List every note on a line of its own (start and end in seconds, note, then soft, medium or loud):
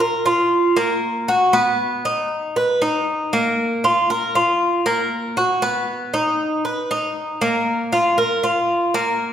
0.00 0.25 A#4 medium
0.26 0.76 F4 medium
0.77 1.27 A#3 medium
1.28 1.53 F#4 medium
1.53 2.03 B3 medium
2.05 2.55 D#4 medium
2.56 2.81 B4 medium
2.82 3.31 D#4 medium
3.33 3.82 A#3 medium
3.84 4.09 F4 medium
4.10 4.35 A#4 medium
4.35 4.85 F4 medium
4.86 5.35 A#3 medium
5.37 5.62 F#4 medium
5.62 6.12 B3 medium
6.14 6.63 D#4 medium
6.65 6.89 B4 medium
6.91 7.40 D#4 medium
7.41 7.91 A#3 medium
7.93 8.17 F4 medium
8.18 8.42 A#4 medium
8.43 8.93 F4 medium
8.94 9.33 A#3 medium